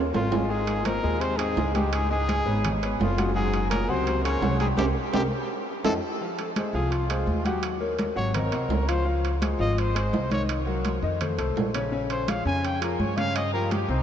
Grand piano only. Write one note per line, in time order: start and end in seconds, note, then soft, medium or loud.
0.00 0.25 A#3 medium
0.00 0.26 A#4 medium
0.00 0.26 C#5 medium
0.31 0.46 G#3 medium
0.31 0.47 G#4 medium
0.31 0.47 G#5 medium
0.50 0.79 G#3 medium
0.50 0.79 G#4 medium
0.50 0.80 G#5 medium
0.86 1.00 C4 medium
0.86 1.00 C5 medium
0.86 1.01 D#5 medium
1.04 1.33 G#3 medium
1.04 1.33 G#4 medium
1.04 1.33 G#5 medium
1.39 1.54 C4 medium
1.39 1.54 C5 medium
1.39 1.54 D#5 medium
1.58 1.72 G#3 medium
1.58 1.72 G#4 medium
1.58 1.72 G#5 medium
1.75 2.04 G#3 medium
1.75 2.05 G#4 medium
1.75 2.05 G#5 medium
2.10 2.40 G#3 medium
2.10 2.40 G#4 medium
2.10 2.40 G#5 medium
2.46 2.75 B3 medium
2.46 2.75 B4 medium
2.46 2.75 C#5 medium
2.83 3.12 B3 medium
2.83 3.12 B4 medium
2.83 3.12 C#5 medium
3.18 3.32 F#3 medium
3.18 3.32 F#4 medium
3.18 3.32 F#5 medium
3.35 3.65 F#3 medium
3.35 3.65 F#4 medium
3.35 3.65 F#5 medium
3.71 3.85 A#3 medium
3.71 3.86 A#4 medium
3.71 3.86 C#5 medium
3.89 4.18 F#3 medium
3.89 4.18 F#4 medium
3.89 4.18 F#5 medium
4.24 4.39 A#3 medium
4.24 4.39 A#4 medium
4.24 4.39 C#5 medium
4.42 4.57 F#3 medium
4.42 4.57 F#4 medium
4.42 4.57 F#5 medium
4.60 4.75 G3 medium
4.60 4.75 G4 medium
4.60 4.75 G5 medium
4.77 4.89 G4 loud
4.77 4.89 A#4 loud
4.77 4.89 C5 medium
5.12 5.24 G4 medium
5.12 5.24 A#4 medium
5.12 5.24 C5 medium
5.85 5.96 D#4 loud
5.85 5.96 F4 medium
5.85 5.96 A4 medium
6.21 6.50 F3 medium
6.21 6.50 F4 medium
6.21 6.50 F5 medium
6.57 6.71 G#3 medium
6.57 6.71 G#4 medium
6.57 6.71 C5 medium
6.74 7.03 F3 medium
6.74 7.03 F4 medium
6.74 7.04 F5 medium
7.10 7.39 G#3 medium
7.10 7.39 G#4 medium
7.10 7.39 C5 medium
7.46 7.75 F#3 medium
7.46 7.75 F#4 medium
7.46 7.75 F#5 medium
7.80 8.10 A#3 medium
7.80 8.10 A#4 medium
7.80 8.10 C#5 medium
8.16 8.31 F#3 medium
8.16 8.31 F#4 medium
8.16 8.31 F#5 medium
8.34 8.49 C4 medium
8.34 8.49 C5 medium
8.34 8.50 D#5 medium
8.53 8.82 C4 medium
8.53 8.82 C5 medium
8.53 8.82 D#5 medium
8.88 9.03 F3 medium
8.88 9.03 F4 medium
8.88 9.03 F5 medium
9.05 9.35 F3 medium
9.05 9.35 F4 medium
9.05 9.35 F5 medium
9.41 9.56 G#3 medium
9.41 9.57 G#4 medium
9.41 9.56 C5 medium
9.59 9.89 F3 medium
9.59 9.89 F4 medium
9.59 9.89 F5 medium
9.95 10.24 G#3 medium
9.95 10.24 G#4 medium
9.95 10.24 C5 medium
10.30 10.60 D#3 medium
10.30 10.60 D#4 medium
10.30 10.60 D#5 medium
10.66 10.96 F#3 medium
10.66 10.96 F#4 medium
10.66 10.96 A#4 medium
11.02 11.17 D#3 medium
11.02 11.17 D#4 medium
11.02 11.18 D#5 medium
11.21 11.35 A3 medium
11.21 11.35 A4 medium
11.21 11.36 C5 medium
11.38 11.67 A3 medium
11.38 11.68 A4 medium
11.38 11.68 C5 medium
11.75 11.89 C#3 medium
11.75 11.89 C#4 medium
11.75 11.89 C#5 medium
11.92 12.21 C#3 medium
11.92 12.21 C#4 medium
11.92 12.22 C#5 medium
12.28 12.43 F3 medium
12.28 12.43 F4 medium
12.28 12.43 G#4 medium
12.46 12.75 C#3 medium
12.46 12.75 C#4 medium
12.46 12.75 C#5 medium
12.81 13.11 F3 medium
12.81 13.11 F4 medium
12.81 13.11 G#4 medium
13.17 13.47 C#3 medium
13.17 13.47 C#4 medium
13.17 13.47 C#5 medium
13.54 13.83 F3 medium
13.54 13.83 F4 medium
13.54 13.83 G4 medium
13.89 14.03 C3 medium
13.89 14.03 C4 medium
13.89 14.03 C5 medium